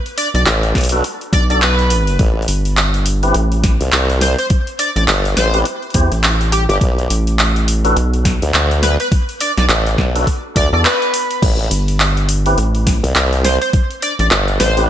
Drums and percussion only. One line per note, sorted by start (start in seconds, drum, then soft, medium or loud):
0.06 open hi-hat soft
0.18 open hi-hat medium
0.35 open hi-hat soft
0.46 clap loud
0.46 open hi-hat soft
0.63 open hi-hat soft
0.75 kick medium
0.75 snare soft
0.75 open hi-hat soft
0.78 open hi-hat soft
0.81 open hi-hat soft
0.84 open hi-hat medium
0.89 open hi-hat medium
0.92 open hi-hat soft
1.04 open hi-hat soft
1.21 open hi-hat soft
1.33 kick loud
1.33 open hi-hat medium
1.50 open hi-hat soft
1.62 clap loud
1.62 open hi-hat soft
1.79 open hi-hat soft
1.90 open hi-hat medium
2.07 open hi-hat soft
2.19 kick loud
2.19 open hi-hat soft
2.42 open hi-hat soft
2.48 open hi-hat medium
2.65 open hi-hat soft
2.77 clap loud
2.77 open hi-hat soft
2.94 open hi-hat soft
3.06 open hi-hat medium
3.23 open hi-hat soft
3.34 open hi-hat soft
3.52 open hi-hat soft
3.64 kick loud
3.64 snare soft
3.64 open hi-hat medium
3.81 open hi-hat soft
3.92 clap loud
3.92 open hi-hat soft
4.10 open hi-hat soft
4.21 snare soft
4.21 open hi-hat medium
4.39 open hi-hat soft
4.50 kick loud
4.50 open hi-hat soft
4.67 open hi-hat soft
4.79 open hi-hat medium
4.96 open hi-hat soft
5.08 clap loud
5.08 open hi-hat soft
5.25 open hi-hat soft
5.37 snare medium
5.37 open hi-hat medium
5.54 open hi-hat soft
5.65 open hi-hat soft
5.82 open hi-hat soft
5.90 open hi-hat soft
5.94 kick loud
5.94 open hi-hat medium
6.00 open hi-hat soft
6.12 open hi-hat soft
6.24 clap loud
6.24 open hi-hat soft
6.41 open hi-hat soft
6.52 open hi-hat medium
6.70 open hi-hat soft
6.81 kick loud
6.81 open hi-hat soft
6.99 open hi-hat soft
7.10 open hi-hat medium
7.27 open hi-hat soft
7.39 clap loud
7.39 open hi-hat soft
7.56 open hi-hat soft
7.68 open hi-hat medium
7.85 open hi-hat soft
7.97 open hi-hat soft
8.14 open hi-hat soft
8.25 kick loud
8.25 snare medium
8.25 open hi-hat medium
8.42 open hi-hat soft
8.54 clap loud
8.54 open hi-hat soft
8.71 open hi-hat soft
8.83 snare soft
8.83 open hi-hat medium
9.00 open hi-hat soft
9.12 kick loud
9.12 open hi-hat soft
9.29 open hi-hat soft
9.40 open hi-hat medium
9.57 snare soft
9.57 open hi-hat soft
9.69 clap loud
9.69 open hi-hat soft
9.87 open hi-hat soft
9.98 kick medium
9.98 snare medium
10.16 open hi-hat soft
10.27 kick medium
10.27 open hi-hat soft
10.56 kick loud
10.56 open hi-hat medium
10.85 clap loud
10.85 open hi-hat soft
11.02 open hi-hat soft
11.14 open hi-hat medium
11.31 open hi-hat soft
11.42 kick loud
11.42 open hi-hat soft
11.42 crash medium
11.59 open hi-hat soft
11.71 open hi-hat medium
11.88 open hi-hat soft
12.00 clap loud
12.00 open hi-hat soft
12.17 open hi-hat soft
12.29 open hi-hat medium
12.46 open hi-hat soft
12.58 open hi-hat soft
12.75 open hi-hat soft
12.87 kick loud
12.87 snare medium
12.87 open hi-hat medium
13.04 open hi-hat soft
13.16 clap loud
13.16 open hi-hat soft
13.33 open hi-hat soft
13.45 snare soft
13.45 open hi-hat medium
13.62 open hi-hat soft
13.73 kick loud
13.73 open hi-hat soft
13.91 open hi-hat soft
14.02 open hi-hat medium
14.19 open hi-hat soft
14.31 clap loud
14.31 open hi-hat soft
14.48 open hi-hat soft
14.60 snare medium
14.60 open hi-hat medium
14.77 open hi-hat soft